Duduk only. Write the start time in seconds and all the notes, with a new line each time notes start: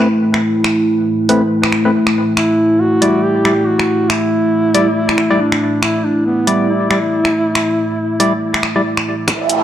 2.37 E4
2.81 F#4
3.24 G4
3.67 F#4
4.10 E4
5.40 D4
5.83 E4
6.05 D4
6.26 B3
6.69 E4